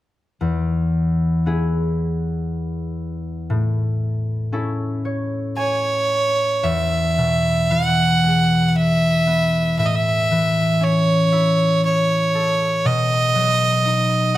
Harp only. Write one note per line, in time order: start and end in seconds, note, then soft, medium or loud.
0.41 3.55 E2 soft
1.46 4.56 B3 soft
1.46 4.08 E4 soft
1.46 3.56 G#4 soft
3.50 6.68 A2 soft
4.52 7.42 C#4 soft
4.52 7.14 E4 soft
4.52 6.73 A4 soft
5.05 6.96 C#5 soft
5.57 7.07 G#5 medium
6.63 9.84 E2 soft
7.18 9.84 B2 soft
7.71 9.84 E3 soft
8.23 9.84 G#3 soft
9.27 12.37 B3 soft
9.78 12.90 A2 soft
10.31 12.90 E3 soft
10.81 13.70 C#4 soft
11.32 13.92 E4 soft
12.35 14.37 A4 soft
12.85 14.37 B2 soft
13.35 14.37 F#3 soft
13.86 14.37 D#4 soft